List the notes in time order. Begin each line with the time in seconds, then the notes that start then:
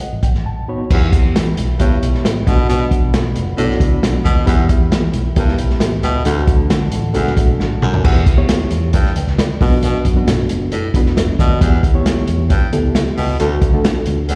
0.00 F#5, closed hi-hat
0.13 A1
0.23 B1 G5, kick, closed hi-hat
0.35 A1, snare
0.46 A5
0.68 B3 D#4 F#4 C#5 B5
0.90 E2 B3 E4 G4 B4 E5 G5 B5, kick, crash
1.13 kick, closed hi-hat
1.26 E2
1.36 E3, snare, closed hi-hat
1.57 B1, closed hi-hat
1.79 C#2 G2 B3 E4 G4 C#5, kick, closed hi-hat
2.01 B1, closed hi-hat
2.14 snare
2.25 A1, snare, closed hi-hat
2.46 B1 B2 B3 D4 F#4 B4 D5 F#5, kick, closed hi-hat
2.69 B2, closed hi-hat
2.91 kick, closed hi-hat
3.03 B1
3.14 B2, snare, closed hi-hat
3.35 F#1, closed hi-hat
3.58 B1 A2 B3 D4 F#4 C#5, closed hi-hat
3.64 D5
3.71 snare
3.80 C#2, kick, closed hi-hat
4.03 B1, snare, closed hi-hat
4.25 D#2 B2, kick, closed hi-hat
4.46 E2 B3 E4 G4 B4 E5 G5, kick, closed hi-hat
4.69 kick, closed hi-hat
4.81 E2
4.91 E3, snare, closed hi-hat
5.13 B1, closed hi-hat
5.36 C#2 G2 B3 E4 G4 A#4, kick, closed hi-hat
5.43 B4
5.48 snare
5.58 B1, closed hi-hat
5.70 snare
5.80 A1 G4 E5, snare, closed hi-hat
6.03 C#2 B2 B4 G5, closed hi-hat
6.25 D2 A3 D4 F#4 A4 D5 F#5 A5, closed hi-hat
6.47 kick, closed hi-hat
6.59 D2
6.70 D3, snare, closed hi-hat
6.91 A1, closed hi-hat
7.14 C#2 E2 A3 D4 F#4 A4, closed hi-hat
7.27 snare
7.37 kick, closed hi-hat
7.48 B1
7.59 A1, snare
7.82 B1 F#2, mid tom
7.93 C#2, floor tom
8.04 E2 B3 E4 G4 B4, kick, crash
8.26 D2, kick, closed hi-hat
8.37 B3 E4 G4 C#5
8.49 snare, closed hi-hat
8.61 muted fingered electric bass stroke
8.70 E2, closed hi-hat
8.93 G2, kick, closed hi-hat
9.05 snare
9.16 D2 B4 G5, closed hi-hat
9.27 C#2, snare
9.38 D5 B5, snare, closed hi-hat
9.61 B1 B2 B3 D4 F#4 B4, kick, open hi-hat
9.83 B2, closed hi-hat
10.05 F#2, kick, closed hi-hat
10.16 B3 D4 F#4 B4
10.28 B2, snare, closed hi-hat
10.49 F#1, closed hi-hat
10.72 A2, closed hi-hat
10.94 F#1 B3 D4 F#4 B4, kick, closed hi-hat
11.06 E1, snare
11.17 E5, snare, closed hi-hat
11.39 D#2 B2 F#4 D5, kick, closed hi-hat
11.60 E2 B3 E4 G4 B4, kick, closed hi-hat
11.83 D2, kick, closed hi-hat
11.94 B3 E4 G4 C#5
12.06 snare, closed hi-hat
12.17 muted fingered electric bass stroke
12.27 E2, closed hi-hat
12.50 G2, kick, closed hi-hat
12.73 D2 B3 E4 G4 A4, closed hi-hat
12.84 C#2
12.95 G4 E5, snare, closed hi-hat
13.17 C#2 B2 B4 G5, open hi-hat
13.39 D2 A3 D4 F#4 A4, closed hi-hat
13.61 C#2, kick, closed hi-hat
13.74 A3 D4 F#4 A4
13.84 snare, closed hi-hat
13.96 muted fingered electric bass stroke
14.06 D2, closed hi-hat
14.29 E2, closed hi-hat